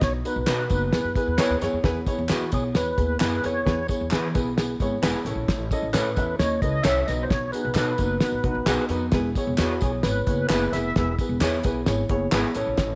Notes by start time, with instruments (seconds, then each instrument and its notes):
Already playing: upright piano B3 D#4 F#4 B4
0.01 upright bass B1, tonewheel organ C#5, kick, snare, closed hi-hat, tambourine
0.24 upright piano B3 D#4 F#4 B4, tonewheel organ B4, closed hi-hat, tambourine
0.36 upright bass B1
0.47 upright bass B2, clean electric guitar B3 D#4 F#4 B4, upright piano B3 D#4 F#4 B4, snare, clap, closed hi-hat, tambourine
0.70 upright bass F#1, upright piano B3 D#4 F#4 B4, kick, closed hi-hat, tambourine
0.92 upright bass E2, upright piano B3 E4 G#4 B4, snare, closed hi-hat, tambourine
1.04 upright bass F#2
1.15 upright piano B3 E4 G#4 B4, kick, closed hi-hat, tambourine
1.27 upright bass E2
1.37 clean electric guitar B3 E4 G#4 B4, upright piano B3 E4 G#4 C#5, snare, clap, closed hi-hat, tambourine
1.50 upright bass D#2
1.61 upright bass F#2, upright piano B3 E4 G#4 C#5, snare, closed hi-hat, tambourine
1.73 upright bass F2
1.83 upright bass E2, upright piano B3 E4 G#4 B4, kick, snare, closed hi-hat, tambourine
2.06 upright piano B3 E4 G#4 C#5, kick, closed hi-hat, tambourine
2.18 upright bass E2
2.29 upright bass E3, upright piano B3 E4 G#4 B4, clean electric guitar B3 E4 G#4 B4, tonewheel organ F#4, snare, clap, closed hi-hat, tambourine
2.52 upright bass B1, upright piano B3 E4 G#4 C#5, tonewheel organ G#4, kick, closed hi-hat, tambourine
2.73 upright bass E2, upright piano B3 E4 G#4 C#5, tonewheel organ B4, snare, closed hi-hat, tambourine
2.97 upright bass D#2, upright piano B3 E4 G#4 B4, kick, closed hi-hat, tambourine
3.20 upright bass F#2, upright piano B3 E4 G#4 B4, clean electric guitar B3 E4 G#4 B4, tonewheel organ B4, snare, clap, closed hi-hat, tambourine
3.42 upright bass F2, upright piano B3 E4 G#4 B4, tonewheel organ C#5, closed hi-hat, tambourine
3.65 upright bass E2, upright piano B3 E4 G#4 B4, kick, snare, closed hi-hat
3.88 upright piano B3 E4 G#4 C#5, kick, closed hi-hat, tambourine
4.01 upright bass E2
4.11 upright bass E3, upright piano B3 E4 G#4 B4, clean electric guitar B3 E4 G#4 B4, snare, clap, closed hi-hat, tambourine
4.34 upright bass B1, upright piano B3 E4 G#4 B4, kick, closed hi-hat, tambourine
4.57 upright piano B3 E4 G#4 B4, snare, closed hi-hat, tambourine
4.80 upright bass G#1, upright piano B3 E4 G#4 C#5, kick, closed hi-hat, tambourine
5.02 upright bass E1, upright piano B3 E4 G#4 B4, clean electric guitar B3 E4 G#4 B4, snare, clap, closed hi-hat, tambourine
5.25 upright bass A1, upright piano C#4 E4 A4 C#5, closed hi-hat, tambourine
5.35 upright bass A#1
5.48 upright bass A1, kick, snare, closed hi-hat, tambourine
5.71 upright piano C#4 E4 A4 D#5, kick, closed hi-hat, tambourine
5.82 upright bass A1
5.93 upright bass A2, upright piano C#4 E4 A4 C#5, clean electric guitar C#4 E4 A4 C#5, tonewheel organ B4, snare, clap, closed hi-hat, tambourine
6.16 upright bass E2, upright piano C#4 E4 A4 E5, kick, closed hi-hat, tambourine
6.39 upright bass D#2, upright piano C#4 E4 A4 D#5, tonewheel organ C#5, snare, closed hi-hat, tambourine
6.62 upright bass C#2, upright piano C#4 E4 A4 B4, tonewheel organ D#5, kick, closed hi-hat, tambourine
6.82 upright bass C2, clean electric guitar C#4 E4 A4 C#5, upright piano C#4 E4 A4 C#5, tonewheel organ E5, snare, clap, closed hi-hat, tambourine
7.06 upright bass B1, upright piano B3 D#4 F#4 B4, tonewheel organ D#5, snare, closed hi-hat, tambourine
7.23 tonewheel organ C5
7.29 upright bass B1, tonewheel organ C#5, kick, snare, closed hi-hat
7.52 upright piano B3 D#4 F#4 G#4, tonewheel organ B4, closed hi-hat, tambourine
7.65 upright bass B1
7.74 upright bass B2, upright piano B3 D#4 F#4 A4, clean electric guitar B3 D#4 F#4 B4, snare, clap, closed hi-hat, tambourine
7.98 upright bass F#1, upright piano B3 D#4 F#4 B4, kick, closed hi-hat, tambourine
8.20 upright piano B3 D#4 F#4 B4, snare, closed hi-hat, tambourine
8.32 upright bass A1
8.43 upright bass B1, upright piano B3 D#4 F#4 B4, kick, closed hi-hat
8.54 upright bass A1
8.66 upright bass B1, clean electric guitar B3 D#4 F#4 B4, upright piano B3 D#4 F#4 G#4, snare, clap, closed hi-hat, tambourine
8.89 upright bass F2, upright piano B3 D#4 F#4 B4, closed hi-hat, tambourine
9.12 upright bass E1, upright piano B3 E4 G#4 B4, kick, snare, closed hi-hat, tambourine
9.35 upright piano B3 E4 G#4 C#5, kick, closed hi-hat, tambourine
9.47 upright bass E1
9.58 upright bass E2, clean electric guitar B3 E4 G#4 B4, upright piano B3 E4 G#4 C#5, tonewheel organ F#4, snare, clap, closed hi-hat, tambourine
9.81 upright bass B1, upright piano B3 E4 G#4 C#5, tonewheel organ G#4, kick, closed hi-hat, tambourine
10.03 upright bass G#1, upright piano B3 E4 G#4 C#5, tonewheel organ B4, snare, closed hi-hat, tambourine
10.27 upright bass F#1, upright piano B3 E4 G#4 C#5, kick, closed hi-hat, tambourine
10.48 upright bass F#1, clean electric guitar B3 E4 G#4 B4, upright piano B3 E4 G#4 B4, tonewheel organ B4, snare, clap, closed hi-hat, tambourine
10.72 upright bass F1, upright piano B3 E4 G#4 B4, tonewheel organ E5, snare, closed hi-hat, tambourine
10.96 upright bass E1, upright piano B3 E4 G#4 B4, kick, snare, closed hi-hat
11.19 upright piano B3 E4 G#4 B4, kick, closed hi-hat, tambourine
11.29 upright bass E1
11.41 upright bass E2, upright piano B3 E4 G#4 C#5, clean electric guitar B3 E4 G#4 B4, snare, clap, closed hi-hat, tambourine
11.63 upright bass B1, upright piano B3 E4 G#4 B4, kick, closed hi-hat, tambourine
11.86 upright bass G#1, upright piano B3 E4 G#4 C#5, snare, closed hi-hat, tambourine
12.09 upright bass F#1, upright piano B3 E4 G#4 C#5, kick, closed hi-hat
12.32 upright bass G#1, clean electric guitar B3 E4 G#4 B4, upright piano B3 E4 G#4 B4, snare, clap, closed hi-hat, tambourine
12.54 upright bass A1, upright piano C#4 E4 A4 C#5, closed hi-hat, tambourine
12.66 upright bass A#1
12.77 upright bass A1, kick, snare, closed hi-hat, tambourine